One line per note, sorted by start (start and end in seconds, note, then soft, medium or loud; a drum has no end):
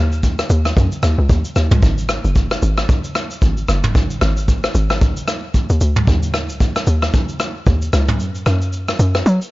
0.00 0.44 D#2 loud
0.12 shaker medium
0.23 kick medium
0.23 shaker medium
0.39 cross-stick medium
0.39 shaker medium
0.50 0.73 D#2 loud
0.50 shaker medium
0.65 cross-stick medium
0.65 shaker medium
0.77 0.90 F#2 loud
0.77 kick loud
0.77 shaker medium
0.92 shaker medium
1.03 1.17 D#2 loud
1.03 cross-stick loud
1.03 shaker loud
1.18 1.28 C#2 medium
1.29 1.43 D#2 loud
1.29 kick medium
1.29 shaker medium
1.45 shaker medium
1.56 1.70 D#2 medium
1.56 cross-stick medium
1.56 shaker loud
1.71 1.81 C#2 medium
1.71 mid tom medium
1.71 shaker medium
1.82 2.20 G#1 loud
1.82 kick loud
1.82 shaker medium
1.98 shaker medium
2.09 cross-stick loud
2.09 shaker medium
2.24 2.58 F#1 medium
2.24 shaker medium
2.36 kick medium
2.36 shaker medium
2.51 cross-stick loud
2.51 shaker medium
2.62 2.86 G#1 loud
2.62 shaker medium
2.77 cross-stick medium
2.77 shaker medium
2.89 kick loud
2.89 shaker medium
3.04 shaker medium
3.15 cross-stick loud
3.15 shaker loud
3.31 shaker medium
3.42 3.65 G#1 loud
3.42 kick medium
3.42 shaker medium
3.57 shaker medium
3.68 3.97 F#1 loud
3.68 cross-stick medium
3.68 shaker loud
3.84 mid tom loud
3.84 shaker medium
3.95 4.18 G#1 loud
3.95 kick loud
3.95 shaker medium
4.10 shaker medium
4.21 4.68 G#1 loud
4.21 cross-stick loud
4.21 shaker medium
4.37 shaker medium
4.48 kick medium
4.48 shaker medium
4.64 cross-stick medium
4.64 shaker medium
4.75 5.22 G#1 loud
4.75 shaker medium
4.90 cross-stick loud
4.90 shaker medium
5.01 kick loud
5.01 shaker medium
5.17 shaker medium
5.28 cross-stick loud
5.28 shaker loud
5.54 kick medium
5.54 shaker medium
5.70 5.80 D#2 loud
5.70 shaker medium
5.81 6.04 D2 medium
5.81 shaker loud
5.96 mid tom medium
5.96 shaker medium
6.07 6.51 D#2 loud
6.07 kick loud
6.07 shaker medium
6.23 shaker medium
6.34 cross-stick loud
6.34 shaker medium
6.49 6.83 C#2 medium
6.49 shaker medium
6.60 kick medium
6.60 shaker medium
6.76 cross-stick loud
6.76 shaker medium
6.87 7.10 D#2 loud
6.87 shaker medium
7.02 cross-stick loud
7.02 shaker medium
7.13 kick loud
7.13 shaker medium
7.29 shaker medium
7.40 cross-stick loud
7.40 shaker loud
7.66 7.90 D#2 loud
7.66 kick medium
7.66 shaker medium
7.82 shaker medium
7.93 8.21 C#2 medium
7.93 cross-stick medium
7.93 shaker loud
8.08 mid tom loud
8.08 shaker medium
8.20 8.43 F#2 loud
8.20 shaker medium
8.35 shaker medium
8.46 8.93 F#2 loud
8.46 cross-stick loud
8.46 shaker medium
8.62 shaker medium
8.73 shaker medium
8.88 cross-stick loud
8.88 shaker medium
8.99 9.23 F#2 loud
8.99 shaker loud
9.15 cross-stick loud
9.15 shaker medium
9.26 9.40 F#3 loud
9.26 shaker medium
9.42 shaker medium